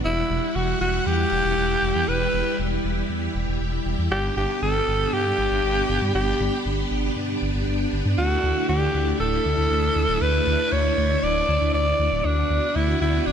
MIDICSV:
0, 0, Header, 1, 4, 480
1, 0, Start_track
1, 0, Key_signature, 2, "major"
1, 0, Tempo, 508475
1, 44, Time_signature, 4, 2, 24, 8
1, 12576, End_track
2, 0, Start_track
2, 0, Title_t, "Alto saxophone"
2, 0, Program_c, 0, 65
2, 46, Note_on_c, 0, 64, 90
2, 526, Note_on_c, 0, 66, 81
2, 540, Note_off_c, 0, 64, 0
2, 759, Note_off_c, 0, 66, 0
2, 765, Note_on_c, 0, 66, 87
2, 1005, Note_on_c, 0, 67, 96
2, 1020, Note_off_c, 0, 66, 0
2, 1965, Note_on_c, 0, 71, 111
2, 1979, Note_off_c, 0, 67, 0
2, 2445, Note_off_c, 0, 71, 0
2, 3883, Note_on_c, 0, 67, 105
2, 4107, Note_off_c, 0, 67, 0
2, 4125, Note_on_c, 0, 67, 99
2, 4348, Note_off_c, 0, 67, 0
2, 4364, Note_on_c, 0, 69, 104
2, 4844, Note_on_c, 0, 67, 103
2, 4858, Note_off_c, 0, 69, 0
2, 5799, Note_off_c, 0, 67, 0
2, 5805, Note_on_c, 0, 67, 91
2, 6251, Note_off_c, 0, 67, 0
2, 7723, Note_on_c, 0, 66, 98
2, 8170, Note_off_c, 0, 66, 0
2, 8203, Note_on_c, 0, 67, 86
2, 8650, Note_off_c, 0, 67, 0
2, 8684, Note_on_c, 0, 69, 103
2, 9644, Note_on_c, 0, 71, 108
2, 9658, Note_off_c, 0, 69, 0
2, 10124, Note_on_c, 0, 73, 99
2, 10138, Note_off_c, 0, 71, 0
2, 10604, Note_on_c, 0, 74, 108
2, 10618, Note_off_c, 0, 73, 0
2, 11078, Note_off_c, 0, 74, 0
2, 11084, Note_on_c, 0, 74, 106
2, 11565, Note_on_c, 0, 62, 103
2, 11579, Note_off_c, 0, 74, 0
2, 12044, Note_on_c, 0, 64, 91
2, 12058, Note_off_c, 0, 62, 0
2, 12279, Note_off_c, 0, 64, 0
2, 12285, Note_on_c, 0, 64, 90
2, 12525, Note_on_c, 0, 62, 92
2, 12539, Note_off_c, 0, 64, 0
2, 12576, Note_off_c, 0, 62, 0
2, 12576, End_track
3, 0, Start_track
3, 0, Title_t, "String machine"
3, 0, Program_c, 1, 50
3, 45, Note_on_c, 1, 55, 81
3, 45, Note_on_c, 1, 78, 92
3, 46, Note_on_c, 1, 64, 77
3, 1946, Note_off_c, 1, 78, 0
3, 1966, Note_on_c, 1, 67, 97
3, 3847, Note_off_c, 1, 55, 0
3, 3847, Note_off_c, 1, 64, 0
3, 3887, Note_on_c, 1, 59, 82
3, 3887, Note_on_c, 1, 62, 77
3, 7688, Note_off_c, 1, 59, 0
3, 7688, Note_off_c, 1, 67, 0
3, 7727, Note_on_c, 1, 64, 90
3, 7728, Note_on_c, 1, 57, 85
3, 9608, Note_off_c, 1, 62, 0
3, 9646, Note_on_c, 1, 62, 77
3, 11528, Note_off_c, 1, 57, 0
3, 11528, Note_off_c, 1, 64, 0
3, 11546, Note_off_c, 1, 62, 0
3, 11565, Note_on_c, 1, 62, 82
3, 11565, Note_on_c, 1, 66, 93
3, 11566, Note_on_c, 1, 59, 86
3, 12576, Note_off_c, 1, 59, 0
3, 12576, Note_off_c, 1, 62, 0
3, 12576, Note_off_c, 1, 66, 0
3, 12576, End_track
4, 0, Start_track
4, 0, Title_t, "Detuned saw bass"
4, 0, Program_c, 2, 39
4, 45, Note_on_c, 2, 28, 96
4, 221, Note_off_c, 2, 28, 0
4, 285, Note_on_c, 2, 28, 105
4, 373, Note_off_c, 2, 28, 0
4, 525, Note_on_c, 2, 28, 96
4, 701, Note_off_c, 2, 28, 0
4, 765, Note_on_c, 2, 28, 90
4, 941, Note_off_c, 2, 28, 0
4, 1005, Note_on_c, 2, 40, 87
4, 1181, Note_off_c, 2, 40, 0
4, 1245, Note_on_c, 2, 28, 100
4, 1333, Note_off_c, 2, 28, 0
4, 1365, Note_on_c, 2, 28, 106
4, 1453, Note_off_c, 2, 28, 0
4, 1486, Note_on_c, 2, 28, 81
4, 1661, Note_off_c, 2, 28, 0
4, 1725, Note_on_c, 2, 28, 94
4, 1813, Note_off_c, 2, 28, 0
4, 1845, Note_on_c, 2, 40, 96
4, 1933, Note_off_c, 2, 40, 0
4, 1965, Note_on_c, 2, 28, 99
4, 2141, Note_off_c, 2, 28, 0
4, 2205, Note_on_c, 2, 28, 105
4, 2293, Note_off_c, 2, 28, 0
4, 2445, Note_on_c, 2, 28, 101
4, 2621, Note_off_c, 2, 28, 0
4, 2685, Note_on_c, 2, 28, 94
4, 2861, Note_off_c, 2, 28, 0
4, 2924, Note_on_c, 2, 40, 89
4, 3100, Note_off_c, 2, 40, 0
4, 3164, Note_on_c, 2, 28, 95
4, 3252, Note_off_c, 2, 28, 0
4, 3284, Note_on_c, 2, 28, 103
4, 3372, Note_off_c, 2, 28, 0
4, 3405, Note_on_c, 2, 28, 84
4, 3581, Note_off_c, 2, 28, 0
4, 3645, Note_on_c, 2, 28, 99
4, 3733, Note_off_c, 2, 28, 0
4, 3765, Note_on_c, 2, 40, 92
4, 3853, Note_off_c, 2, 40, 0
4, 3884, Note_on_c, 2, 31, 96
4, 4060, Note_off_c, 2, 31, 0
4, 4124, Note_on_c, 2, 31, 102
4, 4212, Note_off_c, 2, 31, 0
4, 4364, Note_on_c, 2, 31, 95
4, 4540, Note_off_c, 2, 31, 0
4, 4604, Note_on_c, 2, 31, 94
4, 4780, Note_off_c, 2, 31, 0
4, 4843, Note_on_c, 2, 43, 91
4, 5020, Note_off_c, 2, 43, 0
4, 5083, Note_on_c, 2, 31, 99
4, 5172, Note_off_c, 2, 31, 0
4, 5203, Note_on_c, 2, 31, 111
4, 5292, Note_off_c, 2, 31, 0
4, 5323, Note_on_c, 2, 31, 83
4, 5500, Note_off_c, 2, 31, 0
4, 5564, Note_on_c, 2, 31, 95
4, 5652, Note_off_c, 2, 31, 0
4, 5683, Note_on_c, 2, 43, 95
4, 5772, Note_off_c, 2, 43, 0
4, 5804, Note_on_c, 2, 31, 90
4, 5980, Note_off_c, 2, 31, 0
4, 6044, Note_on_c, 2, 31, 103
4, 6132, Note_off_c, 2, 31, 0
4, 6284, Note_on_c, 2, 31, 98
4, 6461, Note_off_c, 2, 31, 0
4, 6525, Note_on_c, 2, 31, 97
4, 6701, Note_off_c, 2, 31, 0
4, 6765, Note_on_c, 2, 43, 89
4, 6941, Note_off_c, 2, 43, 0
4, 7006, Note_on_c, 2, 31, 98
4, 7093, Note_off_c, 2, 31, 0
4, 7125, Note_on_c, 2, 31, 109
4, 7213, Note_off_c, 2, 31, 0
4, 7246, Note_on_c, 2, 31, 84
4, 7421, Note_off_c, 2, 31, 0
4, 7485, Note_on_c, 2, 31, 101
4, 7573, Note_off_c, 2, 31, 0
4, 7605, Note_on_c, 2, 43, 97
4, 7693, Note_off_c, 2, 43, 0
4, 7725, Note_on_c, 2, 38, 95
4, 7901, Note_off_c, 2, 38, 0
4, 7965, Note_on_c, 2, 38, 106
4, 8053, Note_off_c, 2, 38, 0
4, 8205, Note_on_c, 2, 38, 98
4, 8381, Note_off_c, 2, 38, 0
4, 8445, Note_on_c, 2, 38, 97
4, 8621, Note_off_c, 2, 38, 0
4, 8685, Note_on_c, 2, 26, 90
4, 8861, Note_off_c, 2, 26, 0
4, 8924, Note_on_c, 2, 38, 95
4, 9012, Note_off_c, 2, 38, 0
4, 9045, Note_on_c, 2, 38, 109
4, 9133, Note_off_c, 2, 38, 0
4, 9164, Note_on_c, 2, 38, 82
4, 9340, Note_off_c, 2, 38, 0
4, 9404, Note_on_c, 2, 38, 99
4, 9492, Note_off_c, 2, 38, 0
4, 9525, Note_on_c, 2, 26, 101
4, 9613, Note_off_c, 2, 26, 0
4, 9645, Note_on_c, 2, 38, 91
4, 9821, Note_off_c, 2, 38, 0
4, 9885, Note_on_c, 2, 38, 100
4, 9973, Note_off_c, 2, 38, 0
4, 10124, Note_on_c, 2, 38, 96
4, 10300, Note_off_c, 2, 38, 0
4, 10364, Note_on_c, 2, 38, 99
4, 10540, Note_off_c, 2, 38, 0
4, 10603, Note_on_c, 2, 26, 92
4, 10780, Note_off_c, 2, 26, 0
4, 10843, Note_on_c, 2, 38, 99
4, 10932, Note_off_c, 2, 38, 0
4, 10964, Note_on_c, 2, 38, 107
4, 11052, Note_off_c, 2, 38, 0
4, 11084, Note_on_c, 2, 38, 84
4, 11260, Note_off_c, 2, 38, 0
4, 11324, Note_on_c, 2, 38, 97
4, 11412, Note_off_c, 2, 38, 0
4, 11443, Note_on_c, 2, 26, 94
4, 11532, Note_off_c, 2, 26, 0
4, 11564, Note_on_c, 2, 38, 96
4, 11740, Note_off_c, 2, 38, 0
4, 11803, Note_on_c, 2, 38, 105
4, 11892, Note_off_c, 2, 38, 0
4, 12043, Note_on_c, 2, 38, 98
4, 12220, Note_off_c, 2, 38, 0
4, 12284, Note_on_c, 2, 38, 92
4, 12460, Note_off_c, 2, 38, 0
4, 12524, Note_on_c, 2, 26, 91
4, 12576, Note_off_c, 2, 26, 0
4, 12576, End_track
0, 0, End_of_file